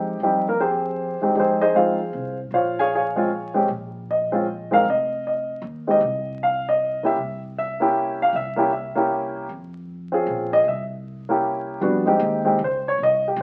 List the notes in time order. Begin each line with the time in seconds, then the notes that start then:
Already playing: F2 G#3 C4 D#4 G4
0.20 F2 G3 C4 D#4 G4
0.49 A#3 A#4
0.60 C4 G4 G#4 C5
1.21 G#3 C4 D#4 G4, muted upright bass stroke
1.35 F2 G#3 C4 D#4 G4
1.39 C4 G#4 C5
1.61 D#4 G#4 C5 D#5
1.74 G#3 C4 D#4 F4 G#4 C5 F5
2.13 C2
2.51 A#1 F4 C5 C#5 F5
2.79 G#4 C#5 F5 G#5
2.95 G#4 C#5 F5 G#5
3.16 G#3 C4 C#4 F4
3.54 G#3 C4 C#4 G4
3.68 A#1
4.11 D#5
4.32 G#3 C4 C#4 F4
4.71 G#3 C4 D#4 A#4 F5
4.84 F1
4.90 D#5
5.27 D#5
5.62 D#2
5.87 G#3 C4 D#4 G4 D#5
6.00 C2
6.43 F5
6.69 D#5
7.03 A#3 C#4 E4 G4 E5
7.16 C2
7.58 E5
7.80 A#3 C#4 E4 G4
8.22 F5
8.33 C2 E5
8.56 A#3 C#4 E4 G4
8.72 E5
8.95 A#3 C#4 E4 G4
9.49 F2
10.12 C4 C#4 F4 G#4
10.27 A#1
10.53 D#5
10.65 C2 E5
11.29 A#3 C#4 E4 G4
11.81 F2 G3 B3 D4 F#4
12.06 G#3 C4 D#4 G4
12.19 D#2
12.44 G#3 C4 D#4 G4
12.59 C#2
12.64 C5
12.88 C#5
12.98 C2
13.03 D#5
13.28 G4
13.36 A#1